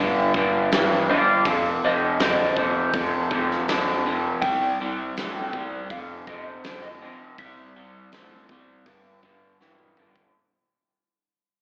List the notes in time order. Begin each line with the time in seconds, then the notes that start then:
Already playing: G2 G4
0.00 G2 D3
0.34 G2 D3, kick
0.72 G2 E3, snare, open hi-hat
0.92 snare
1.09 G2 D3 D5 F5
1.45 F2 C3 A4 F5, kick, open hi-hat
1.84 F2 C3 C5 D#5
2.19 F2 D3 C5 D#5, snare, open hi-hat
2.56 F2 C3 C5, kick
2.93 F2 C3, kick, open hi-hat
3.31 F2 C3, kick
3.51 snare
3.68 F2 D3, snare, open hi-hat
4.06 F2 C3
4.42 C2 C3 G3 G5, kick, open hi-hat
4.80 C2 C3 G3
5.17 C2 C3 A3, snare, open hi-hat
5.53 C2 C3 G3, kick
5.90 F2 C3 F5, kick, open hi-hat
6.27 F2 C3 D#5, kick
6.46 C5
6.64 F2 D3, snare, open hi-hat
6.82 D#5
7.02 F2 C3
7.38 C2 C3 G3 E5, kick, open hi-hat
7.76 C2 C3 G3
8.12 C2 C3 A3, snare, open hi-hat
8.49 C2 C3 G3, kick
8.86 G2 D3, kick, open hi-hat
9.23 G2 D3, kick
9.60 G2 E3, snare
9.79 mid tom
9.97 G2 D3, mid tom
10.16 kick